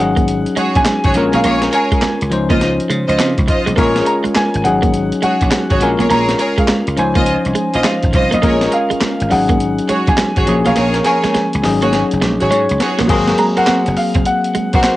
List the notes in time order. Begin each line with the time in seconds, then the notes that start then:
Already playing: F#3
0.00 G#1 C#4 D#4 G#4 F#5
0.16 A#3, kick, closed hi-hat
0.28 closed hi-hat
0.46 closed hi-hat
0.56 G#3 F#4 G#4 C#5, muted slap bass stroke, closed hi-hat
0.75 A#1 G#5, kick, closed hi-hat
0.85 G#3, snare, clap, closed hi-hat
1.04 G#1 F#4 G#4 C#5, kick, closed hi-hat
1.14 A#1 G#3 C#4 F4 A#4, muted clean electric guitar stroke, closed hi-hat
1.33 B1 A#3 G#4 A#4 C#5 F5, closed hi-hat
1.44 A#1 A#3 G#4 A#4 C#5, closed hi-hat
1.62 snare, closed hi-hat
1.72 G#4 A#4 C#5 G#5, muted clean electric guitar stroke, closed hi-hat
1.92 G#3, muted slap bass stroke, kick, closed hi-hat
2.02 G#3, muted slap bass stroke, snare, clap, closed hi-hat
2.21 C#2, closed hi-hat
2.30 C#2 F3 C#4 D#4 C5, muted clean electric guitar stroke, closed hi-hat
2.50 A#3 F4 C5 D#5, kick, closed hi-hat
2.61 snare, closed hi-hat
2.80 closed hi-hat
2.90 C#3 G#3, closed hi-hat
3.08 C#2 F4 C5 D#5, closed hi-hat
3.18 C#3 C4, snare, clap, closed hi-hat
3.38 C#2, kick, closed hi-hat
3.48 F4 C5 D#5, muted clean electric guitar stroke, kick, closed hi-hat
3.66 B1 G#3, closed hi-hat
3.76 A#1 G#3 A#3 C#4 F4 G#4 A#4 C#5, kick, closed hi-hat
3.96 snare, closed hi-hat
4.06 A#5, muted clean electric guitar stroke, closed hi-hat
4.24 G#3, muted slap bass stroke, closed hi-hat
4.35 G#3 G#5, muted slap bass stroke, snare, clap, closed hi-hat
4.54 G#1, closed hi-hat
4.64 G#1 F#3 C#4 D#4 G#4 F#5, muted clean electric guitar stroke, closed hi-hat
4.82 A#3, kick, closed hi-hat
4.94 closed hi-hat
5.12 closed hi-hat
5.22 G#3 F#4 G#4 C#5 F#5, muted slap bass stroke, closed hi-hat
5.41 A#1, kick, closed hi-hat
5.51 G#3, snare, clap, closed hi-hat
5.70 G#1 F#4 G#4 C#5, kick, closed hi-hat
5.80 A#1 G#3 C#4 F4 A#4 G#5, muted clean electric guitar stroke, closed hi-hat
5.99 B1 A#3 G#4 A#4 C#5, closed hi-hat
6.10 A#1 A#3 G#4 A#4 C#5 A#5, closed hi-hat
6.29 snare, closed hi-hat
6.39 G#4 A#4 C#5, muted clean electric guitar stroke, closed hi-hat
6.58 G#3 F5, muted slap bass stroke, kick, closed hi-hat
6.68 G#3, muted slap bass stroke, snare, clap, closed hi-hat
6.87 C#2, closed hi-hat
6.97 C#2 F3 C#4 D#4 C5 G#5, muted clean electric guitar stroke, closed hi-hat
7.15 A#3 F4 C5 D#5, kick, closed hi-hat
7.26 closed hi-hat
7.45 C2, closed hi-hat
7.55 G#3, closed hi-hat
7.74 A#1 F4 C5 D#5, closed hi-hat
7.84 G#3 F5, snare, clap, closed hi-hat
8.03 G#1, kick, closed hi-hat
8.13 C2 F4 C5 D#5, muted clean electric guitar stroke, kick, closed hi-hat
8.31 B1 A#3 D#5, closed hi-hat
8.42 A#1 G#3 A#3 C#4 F4 G#4 A#4 C#5, kick, closed hi-hat
8.61 snare, closed hi-hat
8.72 F5, muted clean electric guitar stroke, closed hi-hat
8.90 G#3, muted slap bass stroke, closed hi-hat
9.01 G#3, muted slap bass stroke, snare, clap, closed hi-hat
9.20 G#1, closed hi-hat
9.30 G#1 F#3 C#4 D#4 G#4 F#5, muted clean electric guitar stroke, open hi-hat
9.49 A#3, kick, closed hi-hat
9.60 closed hi-hat
9.79 closed hi-hat
9.89 G#3 F#4 G#4 C#5, muted slap bass stroke, closed hi-hat
10.07 A#1 G#5, kick, closed hi-hat
10.17 G#3, snare, clap, closed hi-hat
10.36 G#1 F#4 G#4 C#5, kick, closed hi-hat
10.46 A#1 F3 A#3 C#4 G#4, muted clean electric guitar stroke, closed hi-hat
10.65 B1 A#3 G#4 A#4 C#5 F5, closed hi-hat
10.76 A#1 A#3 G#4 A#4 C#5, snare, closed hi-hat
10.94 snare, closed hi-hat
11.05 G#4 A#4 C#5 G#5, muted clean electric guitar stroke, snare, closed hi-hat
11.24 G#3, muted slap bass stroke, snare, closed hi-hat
11.34 G#3, muted slap bass stroke, snare, closed hi-hat
11.53 C#2, closed hi-hat
11.63 G#1 F#3 C#4 D#4 G#4, muted clean electric guitar stroke, snare, open hi-hat
11.82 A#3 F#4 G#4 C#5, closed hi-hat
11.93 snare, closed hi-hat
12.11 F#1, closed hi-hat
12.21 A#1 G#3, snare, closed hi-hat
12.40 G#1 F#4 G#4 C#5, closed hi-hat
12.51 G#2 G#3 C#5, closed hi-hat
12.69 C#2, closed hi-hat
12.80 F#4 G#4 C#5, muted clean electric guitar stroke, snare, closed hi-hat
12.99 A1 A#3, snare, closed hi-hat
13.08 G#1 F#3 A#3 C4 F#4 G#4 A#4 C5, kick, closed hi-hat, crash
13.28 muted clean electric guitar stroke, snare, closed hi-hat
13.38 G#3 A#5, closed hi-hat
13.57 A#3 F#4 A#4 C5 F#5, muted slap bass stroke, closed hi-hat
13.67 C4, muted slap bass stroke, snare, clap, closed hi-hat
13.86 F#1, muted clean electric guitar stroke, closed hi-hat
13.97 F5, open hi-hat
14.15 F#1 C4, kick, closed hi-hat
14.25 F#5, closed hi-hat
14.44 closed hi-hat
14.55 G#3, muted slap bass stroke, closed hi-hat
14.73 A#1 F#4 A#4 C5 F#5, kick, closed hi-hat
14.83 snare, clap, closed hi-hat